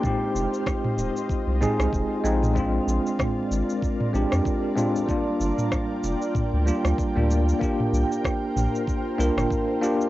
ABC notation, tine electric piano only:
X:1
M:4/4
L:1/16
Q:"Swing 16ths" 1/4=95
K:Fdor
V:1 name="Tine electric piano"
[A,CEG]8- [A,CEG]2 [A,CEA]4 [A,CEF]2 | [A,CDF]8- [A,CDF]2 [A,CDG]4 [A,CDF]2 | [G,B,DF]8- [G,B,DF]2 [G,B,DF]3 [G,B,DF]3 | [B,DFG]8- [B,DFG]2 [B,DFB]4 [B,DFG]2 |]